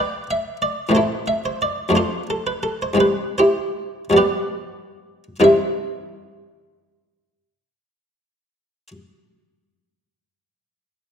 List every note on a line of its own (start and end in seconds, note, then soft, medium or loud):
0.00 0.86 G2 medium
0.00 0.87 G3 soft
0.00 0.87 B3 soft
0.00 0.88 D4 soft
0.00 0.27 B4 medium
0.00 0.27 D5 medium
0.00 0.23 G5 medium
0.31 0.57 E5 medium
0.62 0.89 D5 medium
0.89 1.87 A2 medium
0.89 1.88 E3 soft
0.89 1.88 A3 medium
0.89 1.89 C4 soft
0.95 1.26 E4 medium
0.95 1.25 A4 medium
0.95 1.27 C5 medium
1.28 1.43 E5 medium
1.45 1.60 C5 medium
1.62 1.89 D5 medium
1.89 2.94 F2 medium
1.89 2.95 F3 medium
1.89 2.95 A3 soft
1.89 2.95 D4 medium
1.95 2.26 F4 medium
1.95 2.26 A4 medium
1.95 2.23 C5 medium
2.30 2.46 A4 medium
2.47 2.63 B4 medium
2.63 2.81 A4 medium
2.82 3.00 C5 medium
2.94 4.09 G2 medium
2.94 4.09 E3 soft
2.94 4.10 G3 medium
2.94 4.11 C4 soft
3.00 3.37 B4 medium
3.38 4.12 E4 medium
3.38 4.12 G4 medium
3.38 4.04 C5 medium
4.10 5.35 G2 medium
4.10 5.36 F3 soft
4.10 5.36 G3 soft
4.10 5.37 B3 soft
4.17 5.39 G4 medium
4.17 5.39 B4 medium
4.17 5.23 D5 medium
5.40 8.87 C2 medium
5.40 8.88 G2 soft
5.40 8.88 E3 soft
5.40 8.88 G3 soft
5.40 8.88 C4 soft
5.40 8.89 E4 soft
5.44 8.91 E5 medium